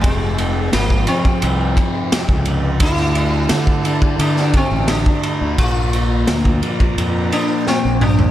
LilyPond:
<<
  \new Staff \with { instrumentName = "String section" } { \time 4/4 \key d \minor \tempo 4 = 86 <f' aes' c'' g''>1 | <g' a' d'' a''>1 | <f' c'' d'' bes''>1 | }
  \new Staff \with { instrumentName = "Sitar" } { \time 4/4 \key d \minor aes4 bes8 c'2 r8 | e'2 d'8 c'8 d'4 | f'2~ f'8 d'8 c'8 d'8 | }
  \new Staff \with { instrumentName = "Distorted electric guitar" } { \clef bass \time 4/4 \key d \minor <f, c f>4. <f, c f>2~ <f, c f>8 | <d a d'>4. <d a d'>2~ <d a d'>8 | <bes, f bes>4. <bes, f bes>2~ <bes, f bes>8 | }
  \new Staff \with { instrumentName = "Fingered electric bass" } { \clef bass \time 4/4 \key d \minor f,,4 aes,,8 r8 c,8 r8. cis,8. | d,4 d4 d8 r16 a,,8 r8 d,16 | bes,,4 d,8 r8 f,8 r8. bes,,8. | }
  \new DrumStaff \with { instrumentName = "Drums" } \drummode { \time 4/4 <bd cymr>8 cymr8 <cymr sn>16 bd16 cymr16 bd16 cymr8 <bd cymr>8 <cymr sn>16 bd16 cymr8 | <bd cymr>16 sn16 cymr8 <cymr sn>16 bd16 cymr16 bd16 cymr16 sn16 <bd cymr>8 <cymr sn>16 bd16 cymr8 | <bd cymr>8 cymr8 <cymr sn>16 bd16 cymr16 bd16 cymr8 cymr8 sn8 toml16 tomfh16 | }
>>